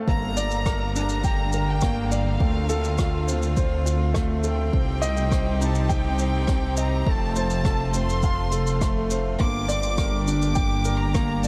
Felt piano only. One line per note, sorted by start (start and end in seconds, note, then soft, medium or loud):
0.08 0.24 A#3 medium
0.37 0.64 D5 loud
0.66 0.83 A#4 medium
0.96 1.23 D4 medium
1.25 1.41 G5 loud
1.54 1.70 A#4 medium
1.83 2.10 A#3 medium
2.12 2.39 D5 medium
2.41 2.57 A3 medium
2.69 2.97 A4 loud
2.99 3.15 F4 medium
3.27 3.55 C4 medium
3.57 3.74 C5 loud
3.86 4.03 F4 medium
4.14 4.42 A3 loud
4.44 4.72 A4 medium
4.73 4.90 C4 medium
5.02 5.30 D#5 loud
5.32 5.49 C5 medium
5.61 5.89 D#4 medium
5.89 6.06 G5 loud
6.20 6.36 C5 medium
6.49 6.76 C4 loud
6.78 7.05 D#5 medium
7.07 7.23 A3 medium
7.36 7.64 C5 loud
7.65 7.82 A4 medium
7.94 8.22 C4 medium
8.24 8.40 F5 loud
8.52 8.69 A4 medium
8.82 9.09 A3 medium
9.11 9.38 C5 medium
9.40 9.56 A#3 medium
9.68 9.96 D5 loud
9.98 10.15 A#4 medium
10.27 10.55 D4 medium
10.55 10.72 G5 loud
10.85 11.02 A#4 medium
11.14 11.42 A#3 medium
11.44 11.48 D5 medium